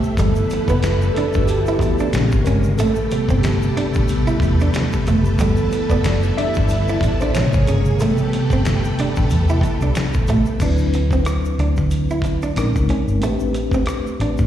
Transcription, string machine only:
Already playing: A3 G4 A4 E5
0.17 G3 E4 A4 B4
2.12 C#3 G#3 A#3
2.78 A3 G4 A4 B4
5.39 G3 E4 A4
7.34 A#3 G#4 C#5
7.99 A3 G4 A4 B4

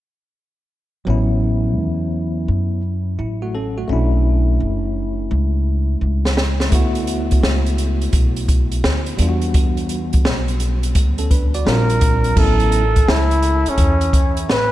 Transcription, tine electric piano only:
1.05 F#3 B3 C#4
1.10 E4
3.19 E4
3.42 A3 F#4
3.55 C#4 A4
3.78 A3 F#4
3.88 A3 C#4 D4
3.93 E4
6.70 A3 B3 E4
6.75 F#4
9.17 G3 B3 D4
9.22 F4
9.29 F#4
11.19 C#4 A4
11.31 D4 B4
11.55 F#4 D5
11.65 G3 C4 D4 F4
12.36 F#3 B3 C#4 E4

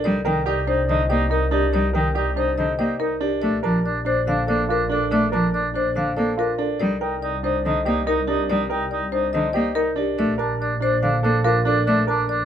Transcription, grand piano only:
Already playing: D4
0.25 A#4
0.46 G4
0.67 D4
1.09 G4
1.30 D#4
1.51 D4
1.93 A#4
2.15 G4
2.36 D4
2.79 G4
2.99 D#4
3.21 D4
3.63 A#4
4.05 D4
4.47 A4
4.69 F4
4.89 D4
5.32 A#4
5.74 D4
6.17 A4
6.37 F4
6.58 D4
7.01 A#4
7.43 D4
7.85 G4
8.07 D#4
8.28 D4
8.70 A#4
9.12 D4
9.54 G4
9.75 D#4
9.96 D4
10.38 A#4
10.80 D4
11.23 A4
11.44 F4
11.65 D4
12.07 A#4

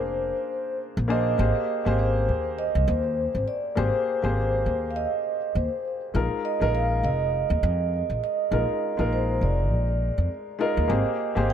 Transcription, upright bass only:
Already playing: F1
0.97 A#1
1.39 G#1
1.86 G#1
2.29 D#2
2.75 C2
2.88 D#2
3.35 G#1
3.77 G#1
4.24 G#1
4.66 D#2
5.55 D#2
6.15 A#1
6.61 A#1
7.03 F1
7.50 D#2
7.63 F2
8.10 A#1
8.52 A#1
8.99 A#1
9.41 F1
9.71 A#1
10.18 F2
10.77 D#2
10.90 G#1
11.37 G#1

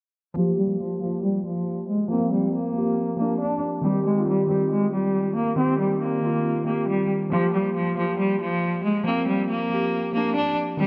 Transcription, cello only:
0.36 F3
0.58 G3
0.80 F3
1.01 F3
1.23 G3
1.45 F3
1.88 G#3
2.10 A#3
2.32 G3
2.53 A#3
3.19 A#3
3.40 D4
3.84 G3
4.06 G#3
4.28 G3
4.49 G3
4.71 G#3
4.93 G3
5.36 A#3
5.58 C4
5.79 G3
6.01 A#3
6.66 A#3
6.88 G3
7.32 F3
7.53 G3
7.75 F3
7.97 F3
8.19 G3
8.40 F3
8.84 G#3
9.06 A#3
9.27 G3
9.49 A#3
10.14 A#3
10.36 D4
10.79 G3

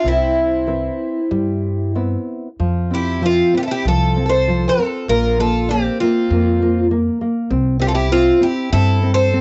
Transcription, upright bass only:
0.05 C2
1.31 G2
2.60 F2
3.85 C2
5.08 A#1
6.30 F2
7.51 C2
8.73 G2

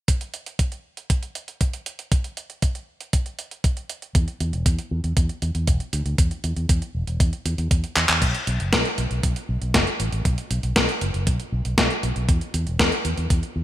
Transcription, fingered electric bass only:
4.15 E2
4.41 E2
4.53 E1
4.66 E2
4.91 E2
5.04 E2
5.17 E2
5.42 E2
5.55 E2
5.68 E1
5.93 D2
6.06 D2
6.18 E2
6.44 E2
6.57 E2
6.69 E2
6.95 E1
7.07 E1
7.20 E2
7.46 E2
7.58 E2
7.71 E2
7.96 E2
8.09 E2
8.22 B1
8.47 B1
8.60 F#1
8.73 B1
8.98 B1
9.11 B1
9.23 B1
9.49 B1
9.62 B1
9.74 F#1
10.00 A1
10.13 A1
10.25 B1
10.51 B1
10.63 B1
10.76 B1
11.02 F#1
11.14 F#1
11.27 B1
11.52 B1
11.65 B1
11.78 B1
12.03 B1
12.16 B1
12.29 E2
12.54 E2
12.67 E1
12.79 E2
13.05 E2
13.18 E2
13.30 E2
13.56 E2

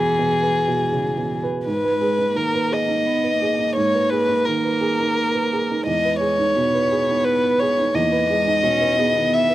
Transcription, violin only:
Already playing: G#4
1.66 B4
2.37 A#4
2.73 D#5
3.76 C#5
4.10 B4
4.45 A#4
5.86 D#5
6.21 C#5
7.24 B4
7.59 C#5
7.95 D#5
9.34 E5

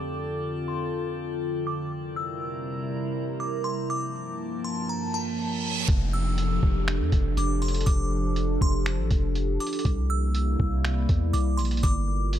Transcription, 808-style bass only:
5.88 F1
6.63 F1
7.00 F2
7.13 F1
7.37 F1
7.87 F1
8.61 F1
8.98 A1
9.11 F1
9.85 C2
10.60 C2
11.09 E2
11.34 C2
11.59 A#1
11.84 G1

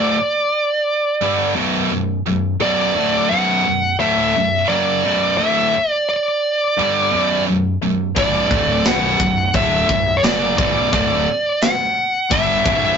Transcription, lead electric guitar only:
Already playing: D5
2.62 D5
3.29 F#5
4.00 E5
4.68 D5
5.37 E5
5.91 D5
6.09 D5
8.18 D5
8.86 F#5
9.56 E5
10.17 C#5
10.25 D5
10.58 D5
10.94 D5
11.62 F#5
12.32 E5

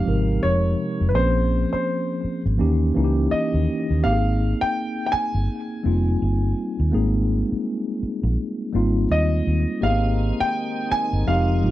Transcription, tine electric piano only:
Already playing: F3 G#3 C4 D#4 G4
0.05 C3 F3 G#3 D#4 A#4
1.13 F3 A#3 C4 C#4 G#4
2.58 E3 A#3 C#4 D#4 G4
2.94 E3 A#3 C#4 D#4 E4
3.04 G4
4.03 A#3 C4 D#4 G4
4.13 G#4
5.83 G3 A#3 C4 D#4 F4
6.91 G#3 A#3 C4 D#4 G#4
8.73 G3 A#3 C4 D#4 F4
9.81 A#3 B3 D#4 G4 G#4
9.89 C4
11.26 F3 G#3 C4 D#4 G4
11.62 C3 F3 G#3 D#4 F4

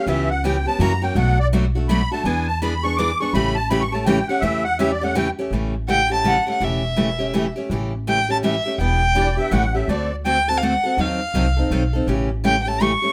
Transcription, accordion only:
0.08 E5
0.30 F#5
0.45 G5
0.67 A5
0.82 A#5
1.03 G5
1.17 F#5
1.39 D5
1.89 B5
2.12 A5
2.25 G#5
2.47 A5
2.61 B5
2.83 C#6
2.97 D6
3.20 C#6
3.34 B5
3.55 A5
3.70 B5
3.80 C#6
3.92 A5
4.05 G5
4.28 F#5
4.40 E5
4.64 F#5
4.79 E5
4.91 D5
5.04 F#5
5.17 G5
9.16 D5
9.38 E5
9.51 F#5
9.74 E5
9.89 D5

